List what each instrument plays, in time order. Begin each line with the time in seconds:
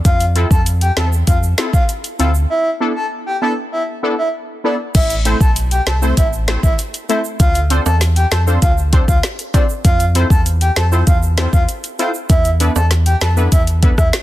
0.05 sub bass F2, soft synth lead F5, kick, closed hi-hat, shaker
0.20 closed hi-hat, shaker
0.35 synth stab C4 E4 F4 A4, closed hi-hat
0.51 sub bass F2, soft synth lead A5, kick, shaker
0.66 closed hi-hat, shaker
0.81 soft synth lead G5, closed hi-hat, shaker
0.97 sub bass E2, synth stab C4 E4 F4 A4, soft synth lead A5, snare, closed hi-hat
1.13 shaker
1.27 sub bass F2, soft synth lead F5, kick, closed hi-hat, shaker
1.43 shaker
1.58 synth stab C4 E4 F4 A4, snare, closed hi-hat, shaker
1.73 soft synth lead F5, kick, shaker
1.89 closed hi-hat, shaker
2.04 closed hi-hat, shaker
2.19 sub bass D2, synth stab C4 E4 F4 A4, soft synth lead F5, closed hi-hat, shaker
2.35 shaker
2.50 soft synth lead E5
2.80 synth stab B3 D4 E4 A4
2.96 soft synth lead A5
3.26 soft synth lead G5
3.42 synth stab B3 D4 E4 A4, soft synth lead A5
3.72 soft synth lead E5
4.03 synth stab B3 D4 E4 A4
4.18 soft synth lead E5
4.64 synth stab B3 D4 E4 A4, soft synth lead D5
4.95 sub bass A1, soft synth lead E5, kick, closed hi-hat, crash, shaker
5.10 closed hi-hat, shaker
5.25 synth stab A3 C4 E4 A4 C5, closed hi-hat, shaker
5.41 sub bass B1, soft synth lead A5, kick, shaker
5.56 closed hi-hat, shaker
5.71 soft synth lead G5, closed hi-hat, shaker
5.86 sub bass C2, synth stab A4 C5, soft synth lead A5, snare, closed hi-hat, shaker
6.02 synth stab A3 C4 E4 A4 C5, shaker
6.17 sub bass A1, soft synth lead E5, kick, closed hi-hat, shaker
6.33 shaker
6.48 synth stab A3 C4 E4 A4 C5, snare, closed hi-hat
6.63 sub bass A1, soft synth lead E5, kick, shaker
6.79 closed hi-hat, shaker
6.94 closed hi-hat, shaker
7.09 synth stab A3 C4 E4 A4 C5, soft synth lead E5, closed hi-hat, shaker
7.24 shaker
7.40 sub bass D2, soft synth lead F5, kick, closed hi-hat, shaker
7.55 closed hi-hat, shaker
7.70 synth stab C4 D4 F4 A4 C5, closed hi-hat, shaker
7.86 sub bass E2, soft synth lead A5, high timbale, shaker
8.01 snare, closed hi-hat, shaker
8.16 soft synth lead G5, closed hi-hat, shaker
8.31 sub bass F2, synth stab A4 C5, soft synth lead A5, snare, closed hi-hat, shaker
8.47 synth stab C4 D4 F4 A4 C5, shaker
8.62 sub bass D2, soft synth lead F5, kick, closed hi-hat, shaker
8.78 shaker
8.93 synth stab C4 D4 F4 A4 C5, kick, closed hi-hat
9.08 sub bass D2, soft synth lead F5, kick, shaker
9.23 snare, closed hi-hat, shaker
9.39 closed hi-hat, shaker
9.54 synth stab C4 D4 F4 A4 C5, soft synth lead D5, kick, closed hi-hat, high timbale, shaker
9.69 shaker
9.85 sub bass F2, soft synth lead F5, kick, closed hi-hat, shaker
10.00 closed hi-hat, shaker
10.15 synth stab C4 E4 F4 A4 C5, closed hi-hat, shaker
10.30 sub bass E2, soft synth lead A5, kick, shaker
10.46 closed hi-hat, shaker
10.61 soft synth lead G5, closed hi-hat, shaker
10.76 sub bass F2, synth stab A4 C5, soft synth lead A5, snare, closed hi-hat, shaker
10.92 synth stab C4 E4 F4 A4 C5, shaker
11.07 sub bass E2, soft synth lead F5, kick, closed hi-hat, shaker
11.23 shaker
11.38 synth stab C4 E4 F4 A4 C5, snare, closed hi-hat
11.53 sub bass E2, soft synth lead F5, kick, shaker
11.69 closed hi-hat, shaker
11.84 closed hi-hat, shaker
11.99 synth stab C4 E4 F4 A4 C5, soft synth lead F5, closed hi-hat, shaker
12.14 shaker
12.29 sub bass E2, soft synth lead E5, kick, closed hi-hat, shaker
12.45 closed hi-hat, shaker
12.60 synth stab B3 D4 E4 A4 B4, closed hi-hat, shaker
12.75 sub bass E2, soft synth lead A5, high timbale, shaker
12.91 snare, closed hi-hat, shaker
13.06 soft synth lead G5, closed hi-hat, shaker
13.21 sub bass F2, synth stab A4 B4, soft synth lead A5, snare, closed hi-hat, shaker
13.37 synth stab B3 D4 E4 A4 B4, shaker
13.52 sub bass E2, soft synth lead E5, kick, closed hi-hat, shaker
13.67 closed hi-hat, shaker
13.82 synth stab B3 D4 E4 A4 B4, kick, closed hi-hat
13.98 sub bass E2, soft synth lead E5, kick, cross-stick, shaker
14.13 snare, closed hi-hat, shaker